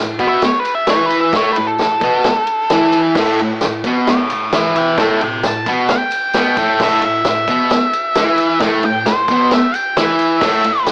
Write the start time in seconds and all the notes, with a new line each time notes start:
Already playing: A2
0.19 B2 B3, kick, ride, tambourine
0.28 E5
0.42 C#5, snare, ride, tambourine
0.59 B4
0.65 ride, tambourine
0.75 E5
0.87 E3 E4 C#5, snare, ride, tambourine
1.06 B4
1.10 ride, tambourine
1.21 E5
1.33 A2 A3 C#5, kick, snare, ride
1.53 B4, ride
1.57 A2
1.67 A4
1.79 A2, snare, ride, tambourine
2.01 B2 B3, kick, ride, tambourine
2.24 snare, ride, tambourine
2.47 ride, tambourine
2.70 E3 E4, snare, ride, tambourine
2.92 ride, tambourine
3.15 A2 A3, kick, snare, crash
3.39 A2, ride
3.61 A2, snare, ride, tambourine
3.84 B2 B3, kick, ride, tambourine
4.07 C#5 E5, snare, ride, tambourine
4.30 C#5 E5, ride, tambourine
4.52 E3 E4 C#5, snare, ride, tambourine
4.57 E5
4.76 E5 G5, ride, tambourine
4.98 A2 A3 E5, kick, snare, ride, tambourine
5.03 G5
5.21 A2 E5 G5, ride, tambourine
5.43 A2 A5, snare, ride, tambourine
5.66 B2 B3, kick, ride, tambourine
5.88 G5, snare, ride, tambourine
6.11 ride, tambourine
6.34 B2 B3, snare, ride, tambourine
6.57 A2 A3, kick, ride, tambourine
6.80 A2 A3 E5, kick, snare, crash
7.02 A2 E5, ride
7.25 A2, snare, ride, tambourine
7.29 E5
7.48 B2 B3, kick, ride, tambourine
7.70 snare, ride, tambourine
7.93 ride, tambourine
8.15 E3 E4, snare, ride, tambourine
8.38 ride, tambourine
8.61 A2 A3, kick, snare, ride
8.83 A2 G5, ride
9.06 A2 C5, snare, ride, tambourine
9.28 B2 B3, kick, ride, tambourine
9.51 E5, snare, ride, tambourine
9.74 G5, ride, tambourine
9.97 E3 E4 E5, snare, ride, tambourine
10.19 ride, tambourine
10.41 A2 A3, kick, snare, crash
10.64 A2, ride
10.86 A2, snare, ride, tambourine